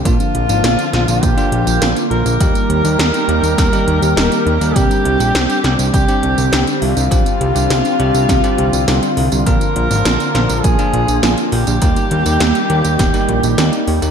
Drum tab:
HH |xxxxxxxxxxxxxxxx|xxxxxxxxxxxxxxxx|xxxxxxxxxxxxxxox|xxxxxxxxxxxxxxox|
TB |xx-xxx-xxx-xxx-x|xx-xxx-xxx-xxx-x|xx-xxx-xxx-xxx-x|xx-xxx-xxx-xxx-x|
SD |----o-o-----o---|----o---o---o---|----o-o-----o---|----o---o---o---|
BD |o-------o-------|o-------o-------|o-------o-------|o-------o-------|

HH |xxxxxxxxxxxxxxox|xxxxxxxxxxxxxxox|
TB |xx-xxx-xxx-xxx-x|xx-xxx-xxx-xxx-x|
SD |----o-o-----o---|----o---o---o---|
BD |o-------o-------|o-------o-------|